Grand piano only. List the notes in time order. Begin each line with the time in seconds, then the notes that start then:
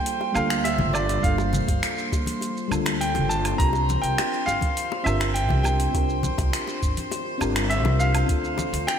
Already playing: G5
0.34 F5
0.64 E5
0.94 D5
1.23 F5
3.01 G5
3.29 A5
3.58 A#5
4.01 G5
4.46 F5
5.04 E5
5.34 G5
5.63 G5
7.70 E5
7.99 F5
8.87 G5